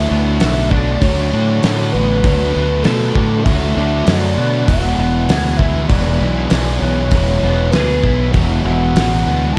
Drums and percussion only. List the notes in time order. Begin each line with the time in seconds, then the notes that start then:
0.40 snare, open hi-hat
0.71 kick
1.01 kick, open hi-hat
1.63 snare, open hi-hat
2.24 kick, open hi-hat
2.84 snare, open hi-hat
3.15 kick
3.46 kick, open hi-hat
4.07 snare, open hi-hat
4.68 kick, open hi-hat
5.29 snare, open hi-hat
5.59 kick
5.89 kick, open hi-hat
6.50 snare, open hi-hat
7.11 kick, open hi-hat
7.72 snare, open hi-hat
8.04 kick
8.34 kick, open hi-hat
8.96 snare, open hi-hat